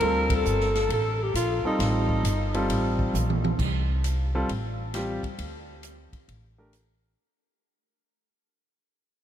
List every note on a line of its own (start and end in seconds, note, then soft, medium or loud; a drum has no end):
0.00 0.44 D2 medium
0.00 0.69 G3 medium
0.00 0.69 C4 medium
0.00 0.70 F4 medium
0.00 0.70 A4 medium
0.00 0.36 A#4 loud
0.00 ride medium
0.30 kick medium
0.30 ride medium
0.35 0.92 A4 loud
0.45 0.88 G1 medium
0.45 hi-hat pedal medium
0.60 snare soft
0.75 snare soft
0.75 ride soft
0.89 1.33 A1 medium
0.89 1.24 A4 medium
0.89 ride medium
1.23 1.35 G4 medium
1.34 1.62 A#1 medium
1.34 1.63 F4 loud
1.34 hi-hat pedal medium
1.34 ride medium
1.64 2.22 G3 medium
1.64 2.22 C4 medium
1.64 3.11 D#4 medium
1.64 2.22 F4 medium
1.64 2.22 A4 medium
1.64 muted upright bass stroke soft
1.79 2.23 A1 medium
1.79 snare soft
1.79 ride medium
2.09 kick medium
2.23 2.67 G1 medium
2.23 hi-hat pedal medium
2.23 ride medium
2.54 3.11 G3 medium
2.54 3.11 C4 medium
2.54 3.11 F4 medium
2.54 3.12 A4 medium
2.54 ride soft
2.69 3.12 A1 medium
2.69 ride medium
2.99 kick medium
3.14 3.57 A#1 medium
3.14 hi-hat pedal medium
3.14 high tom soft
3.30 high tom medium
3.44 high tom medium
3.59 4.45 C2 medium
3.59 kick medium
3.59 crash medium
4.04 hi-hat pedal medium
4.04 ride medium
4.35 4.48 G3 medium
4.35 4.48 C4 medium
4.35 4.48 F4 medium
4.35 4.48 A4 medium
4.49 5.19 A1 medium
4.49 ride medium
4.94 5.21 G3 medium
4.94 5.21 C4 medium
4.94 5.21 F4 medium
4.94 5.21 G4 medium
4.94 snare soft
4.94 hi-hat pedal soft
4.94 ride medium
5.23 muted upright bass stroke soft
5.23 kick soft
5.23 ride soft
5.38 6.09 D2 medium
5.38 ride medium
5.83 hi-hat pedal medium
5.83 ride medium
6.13 muted upright bass stroke soft
6.13 kick soft
6.13 ride soft
6.28 7.14 A1 medium
6.28 ride medium
6.58 6.72 A3 medium
6.58 6.72 D4 medium
6.58 6.72 G4 medium
6.58 6.72 A#4 medium
6.73 hi-hat pedal medium
6.73 ride medium